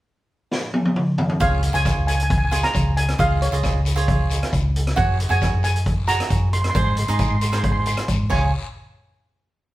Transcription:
0.52 snare medium
0.74 high tom medium
0.85 high tom medium
0.96 mid tom medium
1.18 floor tom medium
1.29 floor tom medium
1.40 1.70 C#2 medium
1.40 1.61 F4 medium
1.40 1.61 G#4 medium
1.40 1.61 C#5 medium
1.40 1.72 F5 medium
1.40 kick loud
1.40 closed hi-hat medium
1.40 long guiro medium
1.63 closed hi-hat medium
1.73 1.94 C#2 medium
1.73 2.21 F4 medium
1.73 2.21 G#4 soft
1.73 2.21 C#5 medium
1.73 2.06 G#5 medium
1.73 closed hi-hat medium
1.85 kick medium
1.85 cross-stick medium
1.85 closed hi-hat medium
1.85 short guiro medium
1.96 2.64 C#2 medium
2.07 2.14 G#5 medium
2.07 closed hi-hat medium
2.07 short guiro medium
2.15 2.22 G#5 medium
2.20 2.29 G#5 medium
2.20 closed hi-hat medium
2.30 2.37 G#5 medium
2.30 kick loud
2.30 closed hi-hat medium
2.30 long guiro medium
2.38 2.44 G#5 medium
2.45 2.51 G#5 medium
2.51 2.92 F4 medium
2.51 2.92 G#4 medium
2.51 2.92 C#5 medium
2.51 2.60 G#5 medium
2.51 closed hi-hat medium
2.51 short guiro medium
2.64 2.98 A#5 medium
2.64 cross-stick medium
2.64 closed hi-hat medium
2.74 3.13 C#2 medium
2.74 kick medium
2.74 closed hi-hat medium
2.74 short guiro medium
2.97 3.20 G#5 medium
2.97 closed hi-hat medium
3.09 cross-stick medium
3.09 closed hi-hat medium
3.18 3.48 C#2 medium
3.18 3.39 F4 medium
3.18 3.39 G#4 medium
3.18 3.39 D#5 medium
3.18 3.40 F5 medium
3.18 kick medium
3.18 closed hi-hat medium
3.18 long guiro medium
3.42 3.83 C#5 medium
3.42 closed hi-hat medium
3.52 3.71 C#2 medium
3.52 3.79 F4 medium
3.52 3.79 G#4 medium
3.52 3.79 D#5 medium
3.52 closed hi-hat medium
3.63 kick medium
3.63 cross-stick medium
3.63 closed hi-hat medium
3.63 short guiro medium
3.74 4.41 C#2 medium
3.85 closed hi-hat medium
3.85 short guiro medium
3.96 4.50 F4 medium
3.96 4.50 G#4 medium
3.96 4.50 C#5 medium
3.96 closed hi-hat soft
4.08 kick medium
4.08 closed hi-hat medium
4.08 long guiro medium
4.30 closed hi-hat medium
4.30 short guiro medium
4.43 cross-stick medium
4.43 closed hi-hat medium
4.53 4.91 C#2 medium
4.53 kick medium
4.53 closed hi-hat medium
4.53 short guiro medium
4.76 closed hi-hat medium
4.87 cross-stick medium
4.87 closed hi-hat soft
4.96 5.26 F#2 medium
4.96 5.17 F#4 medium
4.96 5.17 G#4 medium
4.96 5.17 C#5 medium
4.96 5.31 F#5 medium
4.96 kick loud
4.96 closed hi-hat medium
4.96 long guiro medium
5.20 closed hi-hat medium
5.29 5.50 F#2 medium
5.29 5.76 F#4 medium
5.29 5.77 G#4 medium
5.29 5.77 C#5 medium
5.29 5.63 G#5 medium
5.29 closed hi-hat soft
5.41 kick medium
5.41 cross-stick medium
5.41 closed hi-hat medium
5.41 short guiro medium
5.53 6.20 F#2 medium
5.63 6.05 G#5 medium
5.63 closed hi-hat medium
5.63 short guiro medium
5.76 closed hi-hat medium
5.85 kick medium
5.85 closed hi-hat medium
5.85 long guiro medium
6.07 6.48 F#4 medium
6.07 6.48 G#4 medium
6.07 6.48 C#5 medium
6.07 6.54 A#5 medium
6.07 closed hi-hat medium
6.07 short guiro medium
6.20 cross-stick medium
6.20 closed hi-hat medium
6.30 6.69 F#2 medium
6.30 kick medium
6.30 closed hi-hat medium
6.30 short guiro medium
6.53 6.60 C6 medium
6.53 closed hi-hat medium
6.62 6.68 C6 medium
6.62 cross-stick medium
6.62 closed hi-hat medium
6.70 6.75 C6 medium
6.74 7.04 G#2 medium
6.74 6.95 D#4 medium
6.74 6.95 G#4 soft
6.74 6.95 C5 medium
6.74 6.83 C6 medium
6.74 kick loud
6.74 closed hi-hat medium
6.74 long guiro medium
6.84 6.90 C6 medium
6.92 6.98 C6 soft
6.97 7.05 C6 medium
6.97 closed hi-hat medium
7.07 7.28 G#2 medium
7.07 7.35 D#4 medium
7.07 7.35 G#4 medium
7.07 7.36 D#5 medium
7.07 7.12 C6 soft
7.07 closed hi-hat medium
7.14 7.20 C6 medium
7.19 7.28 C6 soft
7.19 kick medium
7.19 closed hi-hat medium
7.19 short guiro medium
7.29 7.98 G#2 medium
7.29 7.34 C6 medium
7.35 7.41 C6 medium
7.41 7.49 C6 medium
7.41 closed hi-hat medium
7.41 short guiro medium
7.50 8.06 D#4 medium
7.50 8.06 G#4 medium
7.50 8.06 C5 medium
7.50 7.57 C6 medium
7.50 cross-stick medium
7.50 closed hi-hat medium
7.58 7.63 C6 medium
7.63 7.71 C6 medium
7.63 kick medium
7.63 closed hi-hat medium
7.63 long guiro medium
7.72 7.79 C6 medium
7.80 7.86 C6 medium
7.86 7.94 C6 medium
7.86 closed hi-hat medium
7.86 short guiro medium
7.97 cross-stick medium
7.97 closed hi-hat medium
8.08 8.27 G#2 medium
8.08 kick medium
8.08 closed hi-hat medium
8.08 short guiro medium
8.30 8.51 C#2 medium
8.30 8.51 F4 medium
8.30 8.51 G#4 medium
8.30 8.51 C#5 medium
8.30 8.52 G#5 medium
8.30 kick medium
8.30 crash medium
8.30 long guiro medium

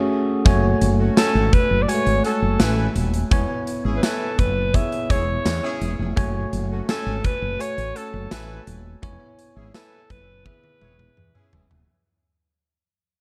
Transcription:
0.00 0.45 A3 loud
0.00 0.48 C#4 loud
0.00 0.46 F#4 loud
0.00 0.48 G#4 loud
0.00 0.46 C#5 loud
0.45 0.73 F#1 loud
0.45 1.57 A3 medium
0.45 1.57 F#4 medium
0.45 1.57 C#5 loud
0.45 1.57 G#5 medium
0.45 kick loud
0.45 closed hi-hat medium
0.81 1.08 F#1 loud
0.81 closed hi-hat medium
0.99 1.14 A3 medium
0.99 1.14 C#4 medium
0.99 1.14 F#4 medium
1.17 1.46 A3 loud
1.17 1.46 C#4 loud
1.17 1.55 A4 medium
1.17 1.46 G#5 loud
1.17 snare loud
1.17 closed hi-hat medium
1.17 tambourine medium
1.35 1.48 G#1 medium
1.53 1.84 B4 loud
1.53 kick loud
1.53 closed hi-hat medium
1.71 1.84 F#1 medium
1.82 1.91 D5 medium
1.88 1.95 G#3 medium
1.88 3.00 F#4 medium
1.88 2.24 C#5 loud
1.88 3.00 C#5 medium
1.88 3.00 G#5 medium
1.88 closed hi-hat medium
1.94 3.03 A3 medium
2.06 2.20 G#1 medium
2.06 closed hi-hat medium
2.24 2.39 C#4 medium
2.24 2.38 F#4 medium
2.24 2.39 A4 medium
2.24 2.92 A4 medium
2.24 closed hi-hat medium
2.42 2.56 F#1 medium
2.60 2.87 A1 medium
2.60 2.89 E4 medium
2.60 2.89 B4 loud
2.60 2.89 G#5 loud
2.60 snare loud
2.60 closed hi-hat medium
2.60 tambourine medium
2.95 3.22 D#1 medium
2.95 closed hi-hat medium
3.14 closed hi-hat medium
3.31 3.45 E1 loud
3.31 4.42 B3 medium
3.31 4.43 E4 medium
3.31 4.43 C#5 medium
3.31 4.43 G#5 medium
3.31 kick loud
3.31 closed hi-hat medium
3.67 closed hi-hat medium
3.85 3.98 G#1 medium
3.85 3.99 C#4 medium
3.85 3.99 E4 medium
3.85 3.99 G#4 loud
3.97 4.05 B4 medium
4.03 4.31 E4 medium
4.03 4.41 A4 medium
4.03 4.31 B4 loud
4.03 4.31 G#5 loud
4.03 snare loud
4.03 closed hi-hat medium
4.03 tambourine medium
4.39 4.79 F#1 medium
4.39 4.77 B4 medium
4.39 kick medium
4.39 closed hi-hat medium
4.74 5.85 B3 medium
4.74 5.85 E4 medium
4.74 5.86 G#4 medium
4.74 5.86 C#5 medium
4.74 5.12 E5 loud
4.74 kick loud
4.74 closed hi-hat medium
4.92 closed hi-hat medium
5.10 5.37 E1 loud
5.10 5.24 E4 medium
5.10 5.24 G#4 medium
5.10 5.24 C#5 medium
5.10 5.82 C#5 medium
5.10 kick medium
5.10 closed hi-hat medium
5.45 5.59 E2 loud
5.45 snare loud
5.45 closed hi-hat medium
5.45 tambourine medium
5.64 5.92 C#4 loud
5.64 5.92 E4 loud
5.64 5.92 G#4 loud
5.81 5.95 E1 medium
5.81 closed hi-hat medium
5.99 6.13 F1 medium
6.16 6.44 F#1 loud
6.16 7.28 A3 medium
6.16 7.28 F#4 medium
6.16 7.28 C#5 medium
6.16 7.28 G#5 medium
6.16 kick loud
6.16 closed hi-hat medium
6.53 6.80 F#1 loud
6.53 closed hi-hat medium
6.71 6.85 A3 medium
6.71 6.85 C#4 medium
6.71 6.85 F#4 medium
6.89 7.17 A3 loud
6.89 7.17 C#4 loud
6.89 7.27 A4 medium
6.89 7.17 G#5 loud
6.89 snare loud
6.89 closed hi-hat medium
6.89 tambourine medium
7.06 7.20 G#1 medium
7.24 7.62 B4 loud
7.24 kick medium
7.24 closed hi-hat medium
7.42 7.55 F#1 medium
7.59 8.71 A3 medium
7.59 8.71 F#4 medium
7.59 7.98 C#5 loud
7.59 8.71 C#5 medium
7.59 8.71 G#5 medium
7.59 closed hi-hat medium
7.78 7.91 A1 medium
7.78 closed hi-hat soft
7.96 8.10 C#4 medium
7.96 8.10 F#4 medium
7.96 8.10 A4 medium
7.96 8.67 A4 medium
7.96 closed hi-hat medium
8.14 8.27 F#1 loud
8.31 8.58 A1 medium
8.31 8.60 E4 medium
8.31 8.60 B4 loud
8.31 8.60 G#5 loud
8.31 snare loud
8.31 closed hi-hat medium
8.31 tambourine medium
8.67 8.94 D#1 medium
8.67 closed hi-hat medium
9.02 9.16 E1 loud
9.02 10.14 B3 medium
9.02 10.14 E4 medium
9.02 10.14 C#5 medium
9.02 10.14 G#5 medium
9.02 kick loud
9.02 closed hi-hat medium
9.39 closed hi-hat medium
9.56 9.70 G#1 medium
9.56 9.71 C#4 medium
9.56 9.71 E4 medium
9.56 9.71 G#4 loud
9.74 10.03 E4 medium
9.74 10.12 A4 loud
9.74 10.03 B4 loud
9.74 10.03 G#5 loud
9.74 snare loud
9.74 closed hi-hat medium
9.74 tambourine medium
10.10 10.50 F#1 medium
10.10 10.45 B4 loud
10.10 kick medium
10.10 closed hi-hat medium
10.45 11.56 B3 medium
10.45 11.57 E4 medium
10.45 11.57 G#4 medium
10.45 11.49 B4 medium
10.45 11.57 E5 medium
10.45 kick loud
10.45 high tom medium
10.64 high tom medium
10.81 11.08 E1 loud
10.81 10.96 E4 medium
10.81 10.96 G#4 medium
10.81 10.96 C#5 medium
10.81 mid tom medium
10.99 mid tom medium
11.17 11.31 E2 loud
11.17 mid tom medium
11.35 11.64 C#4 loud
11.35 11.64 E4 loud
11.35 11.64 G#4 loud
11.35 mid tom medium
11.53 11.66 E1 medium
11.53 floor tom loud
11.71 11.84 D#1 medium
11.71 floor tom medium

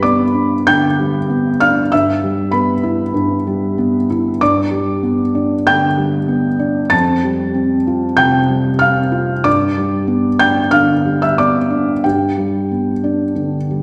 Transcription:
0.00 0.63 G2 soft
0.00 0.22 G3 soft
0.00 0.54 B3 soft
0.00 1.95 B4 medium
0.00 0.64 D5 soft
0.00 1.94 B5 medium
0.00 0.67 D6 medium
0.34 0.86 D4 soft
0.67 1.17 D3 soft
0.67 1.57 G5 medium
0.67 1.61 G6 loud
0.99 1.49 G3 soft
1.30 1.79 B3 soft
1.60 1.92 D4 soft
1.60 1.90 F5 medium
1.60 1.92 F6 medium
1.92 3.12 G2 soft
1.92 2.50 E5 medium
1.92 2.54 E6 medium
2.24 2.73 G3 soft
2.51 3.03 B3 soft
2.51 4.05 B4 soft
2.51 4.08 B5 medium
2.83 3.34 E4 medium
3.14 4.36 G2 soft
3.47 3.97 G3 soft
3.78 4.28 B3 soft
4.10 4.41 E4 medium
4.41 5.64 G2 medium
4.41 5.64 D5 medium
4.41 5.68 D6 medium
4.71 5.22 G3 soft
5.03 5.54 B3 soft
5.35 5.86 D4 soft
5.66 6.17 D3 soft
5.66 6.89 G5 medium
5.66 6.92 G6 medium
5.97 6.48 G3 soft
6.28 6.79 B3 soft
6.59 6.92 D4 medium
6.90 8.14 F2 medium
6.90 8.14 A5 medium
6.90 8.18 A6 medium
7.24 7.75 G3 soft
7.54 8.05 C4 soft
7.87 8.38 F4 soft
8.17 8.69 C3 soft
8.17 8.78 G5 medium
8.17 8.81 G6 loud
8.48 9.00 G3 soft
8.79 9.32 C4 soft
8.79 9.41 F5 medium
8.79 9.44 F6 medium
9.12 9.45 F4 medium
9.44 10.69 G2 medium
9.44 10.37 D5 medium
9.44 10.41 D6 medium
9.78 10.29 G3 soft
10.07 10.59 B3 soft
10.39 10.92 D4 soft
10.39 10.70 G5 medium
10.39 10.72 G6 loud
10.71 11.24 D3 soft
10.71 11.18 F5 medium
10.71 11.21 F6 medium
11.05 11.57 G3 soft
11.22 11.37 E5 medium
11.22 11.38 E6 medium
11.38 11.91 B3 soft
11.38 12.01 D5 medium
11.38 12.04 D6 medium
11.70 12.04 D4 soft
12.04 13.33 G2 soft
12.04 13.83 G4 soft
12.04 13.83 G5 medium
12.38 12.90 G3 soft
12.71 13.24 B3 soft
13.04 13.56 D4 soft
13.35 13.83 D3 soft
13.71 13.83 G3 soft

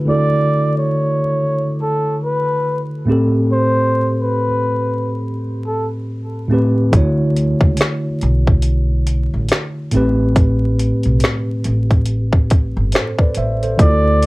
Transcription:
0.05 1.21 D3 medium
0.05 1.21 A3 medium
0.05 1.22 E4 medium
0.05 1.23 F#4 medium
0.05 0.79 D5 loud
0.11 1.23 A4 medium
0.78 1.76 C#5 medium
1.81 2.19 A4 medium
2.23 2.87 B4 medium
3.05 4.45 A2 medium
3.05 4.46 A3 medium
3.05 4.47 C4 medium
3.05 4.47 G4 medium
3.11 4.48 A4 medium
3.52 4.16 C5 medium
4.21 5.19 B4 medium
5.67 5.89 A4 medium
6.48 6.80 A2 medium
6.48 6.81 A3 medium
6.48 6.81 C4 medium
6.52 6.82 G4 medium
6.52 6.83 B4 medium
6.91 7.52 D2 medium
6.91 8.06 D3 medium
6.91 8.07 A3 medium
6.91 8.08 E4 medium
6.91 kick loud
6.91 closed hi-hat medium
6.96 8.09 F#4 medium
6.96 8.09 C#5 medium
7.37 closed hi-hat medium
7.61 7.76 C#2 medium
7.61 kick medium
7.77 snare loud
7.77 closed hi-hat medium
7.82 finger snap medium
8.21 9.29 B1 medium
8.21 closed hi-hat soft
8.47 kick medium
8.62 closed hi-hat medium
9.07 closed hi-hat medium
9.34 9.48 A1 medium
9.48 snare loud
9.48 closed hi-hat medium
9.53 finger snap medium
9.91 10.90 A1 medium
9.91 11.31 A2 medium
9.91 11.32 A3 medium
9.91 11.32 C4 medium
9.91 closed hi-hat medium
9.95 11.33 G4 medium
9.95 11.34 B4 medium
10.36 kick loud
10.36 closed hi-hat medium
10.79 closed hi-hat medium
11.03 11.20 B1 medium
11.03 closed hi-hat soft
11.20 snare loud
11.20 closed hi-hat medium
11.25 finger snap medium
11.64 12.72 A1 medium
11.64 closed hi-hat soft
11.91 kick medium
11.91 closed hi-hat soft
12.06 closed hi-hat medium
12.33 kick medium
12.50 kick medium
12.50 closed hi-hat medium
12.77 12.91 G1 medium
12.92 13.18 A4 soft
12.92 13.18 C5 medium
12.92 snare loud
12.92 closed hi-hat medium
12.96 finger snap medium
13.18 13.36 B4 medium
13.18 13.36 D5 medium
13.18 kick medium
13.34 13.73 A1 medium
13.34 13.61 C5 medium
13.34 13.61 E5 medium
13.34 closed hi-hat medium
13.63 13.82 A4 soft
13.63 14.03 C5 medium
13.63 closed hi-hat soft
13.78 14.26 D2 loud
13.78 14.26 D3 medium
13.78 14.26 A3 medium
13.78 14.26 E4 medium
13.78 14.26 D5 loud
13.78 kick loud
13.78 closed hi-hat medium
13.82 13.88 F4 medium
13.82 14.26 A4 medium
13.88 14.26 F#4 medium
14.23 closed hi-hat medium

